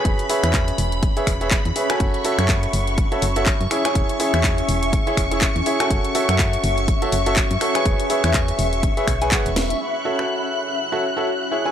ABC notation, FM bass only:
X:1
M:4/4
L:1/16
Q:"Swing 16ths" 1/4=123
K:F#m
V:1 name="FM bass" clef=bass
E,,, z2 E,,2 z E,,,2 z2 E,,,2 z E,, z2 | F,,, z2 F,,2 z F,,,2 z2 F,,,2 z F,, z2 | E,,, z2 E,,2 z E,,,2 z2 E,,,2 z E,, z2 | F,,, z2 F,,2 z F,,,2 z2 F,,,2 z F,, z2 |
E,,, z2 E,,2 z E,,,2 z2 B,,,2 z E,,,2 z | z16 |]